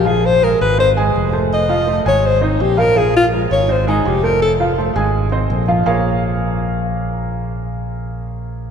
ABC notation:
X:1
M:4/4
L:1/8
Q:1/4=166
K:Bbm
V:1 name="Alto saxophone"
A c B _c =c z3 | e3 d c E =G B | A F z d c E =G B | =A z6 z |
z8 | z8 |]
V:2 name="Grand piano"
[F,Ff]2 [A,AB]2 [Cce] [A,Aa]2 [=A,=Ac]- | [=A,=Ac] [F,Ff] [A,Ac] [_A,_Aa]2 [Cce]2 [F,Ff] | [F,Ff]2 [A,AB]2 [Cce] [A,Aa]2 [=A,=Ac]- | [=A,=Ac] [F,Ff] [A,Ac] [_A,_Aa]2 [Cce]2 [F,Ff] |
[B,FABdf]8- | [B,FABdf]8 |]
V:3 name="Fingered electric bass" clef=bass
B,,,3 A,,,3 F,,,2- | F,,,3 A,,,3 B,,,2- | B,,,3 A,,,3 F,,,2- | F,,,3 A,,,3 B,,,2 |
B,,,8- | B,,,8 |]